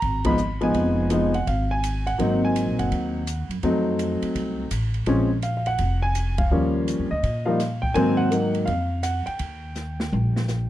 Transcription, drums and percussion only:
0.02 kick, ride
0.24 kick, ride
0.38 hi-hat pedal
0.61 ride
0.74 kick, ride
1.10 hi-hat pedal, ride
1.34 ride
1.47 kick, ride
1.84 hi-hat pedal, ride
2.07 ride
2.19 kick, ride
2.56 hi-hat pedal, ride
2.79 ride
2.91 kick, ride
3.27 hi-hat pedal, ride
3.51 ride
3.63 kick, ride
3.99 hi-hat pedal, ride
4.22 ride
4.35 kick, ride
4.71 hi-hat pedal, ride
4.94 ride
5.06 kick, ride
5.42 hi-hat pedal, ride
5.66 ride
5.78 kick, ride
6.15 hi-hat pedal, ride
6.38 kick, ride
6.88 hi-hat pedal, ride
7.23 kick, ride
7.60 snare, hi-hat pedal, ride
7.83 kick
7.95 kick, ride
8.32 hi-hat pedal, ride
8.55 ride
8.67 kick, ride
9.03 hi-hat pedal, ride
9.27 ride
9.39 kick, ride
9.75 snare, hi-hat pedal
10.00 snare
10.13 high tom
10.36 snare
10.48 snare, hi-hat pedal

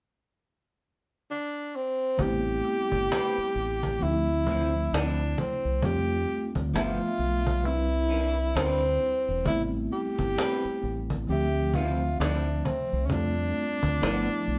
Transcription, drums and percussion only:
2.19 cajon bass
2.65 cajon slap
2.92 cajon bass
3.12 cajon slap
3.55 cajon slap
3.83 cajon bass
4.01 cajon slap
4.47 cajon bass
4.72 cajon slap
4.94 cajon slap
5.38 cajon bass
5.82 cajon bass
6.29 cajon slap
6.55 cajon bass
6.76 cajon slap
7.18 cajon slap
7.46 cajon bass
7.63 cajon slap
8.11 cajon slap
8.35 cajon slap
8.57 cajon slap
9.00 cajon slap
9.46 cajon bass
9.91 cajon slap
10.19 cajon bass
10.38 cajon slap
10.82 cajon slap
11.10 cajon bass
11.27 cajon slap
11.74 cajon bass
11.99 cajon slap
12.21 cajon slap
12.65 cajon bass
13.10 cajon bass
13.56 cajon slap
13.83 cajon bass
14.03 cajon slap
14.46 cajon slap

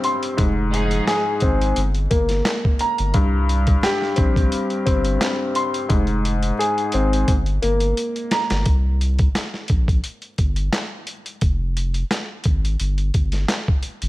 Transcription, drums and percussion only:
0.04 closed hi-hat
0.23 closed hi-hat
0.38 kick, closed hi-hat
0.74 closed hi-hat
0.91 closed hi-hat
1.07 snare, clap, closed hi-hat
1.40 kick, closed hi-hat
1.61 closed hi-hat
1.76 closed hi-hat
1.94 closed hi-hat
2.11 kick, closed hi-hat
2.29 snare, closed hi-hat
2.45 snare, clap, closed hi-hat
2.65 kick
2.79 closed hi-hat
2.98 closed hi-hat
3.14 kick, closed hi-hat
3.49 closed hi-hat
3.67 kick, closed hi-hat
3.83 snare, clap, closed hi-hat
4.02 snare
4.16 kick, closed hi-hat
4.36 kick, closed hi-hat
4.52 closed hi-hat
4.70 closed hi-hat
4.87 kick, closed hi-hat
5.05 closed hi-hat
5.21 snare, clap, closed hi-hat
5.55 closed hi-hat
5.74 closed hi-hat
5.90 kick, closed hi-hat
6.07 closed hi-hat
6.25 closed hi-hat
6.43 closed hi-hat
6.61 closed hi-hat
6.78 closed hi-hat
6.92 closed hi-hat
7.13 closed hi-hat
7.28 kick, closed hi-hat
7.46 closed hi-hat
7.62 closed hi-hat
7.80 closed hi-hat
7.97 closed hi-hat
8.16 closed hi-hat
8.31 snare, closed hi-hat
8.50 snare, closed hi-hat
8.66 kick, closed hi-hat
9.01 closed hi-hat
9.19 kick, closed hi-hat
9.35 snare, clap, closed hi-hat
9.54 snare
9.68 kick, closed hi-hat
9.88 kick, closed hi-hat
10.04 closed hi-hat
10.22 closed hi-hat
10.38 kick, closed hi-hat
10.56 closed hi-hat
10.73 snare, clap, closed hi-hat
11.07 closed hi-hat
11.26 closed hi-hat
11.41 kick, closed hi-hat
11.77 closed hi-hat
11.94 closed hi-hat
12.11 snare, clap, closed hi-hat
12.44 kick, closed hi-hat
12.65 closed hi-hat
12.80 closed hi-hat
12.98 closed hi-hat
13.14 kick, closed hi-hat
13.32 snare, closed hi-hat
13.49 snare, clap, closed hi-hat
13.68 kick
13.83 closed hi-hat
14.02 closed hi-hat

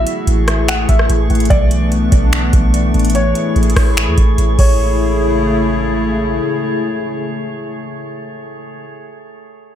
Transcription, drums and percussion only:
0.07 closed hi-hat
0.27 closed hi-hat
0.48 cross-stick, closed hi-hat
0.68 finger snap, closed hi-hat
0.89 kick, closed hi-hat
0.99 cross-stick
1.10 closed hi-hat
1.30 closed hi-hat
1.35 closed hi-hat
1.40 closed hi-hat
1.45 closed hi-hat
1.50 kick, closed hi-hat
1.71 closed hi-hat
1.92 closed hi-hat
2.12 kick, closed hi-hat
2.33 finger snap, closed hi-hat
2.53 kick, closed hi-hat
2.74 closed hi-hat
2.94 closed hi-hat
2.99 closed hi-hat
3.05 closed hi-hat
3.10 closed hi-hat
3.15 closed hi-hat
3.35 closed hi-hat
3.56 closed hi-hat
3.63 closed hi-hat
3.70 closed hi-hat
3.76 kick, cross-stick, open hi-hat
3.97 finger snap, closed hi-hat
4.18 kick, closed hi-hat
4.38 closed hi-hat
4.59 kick, crash

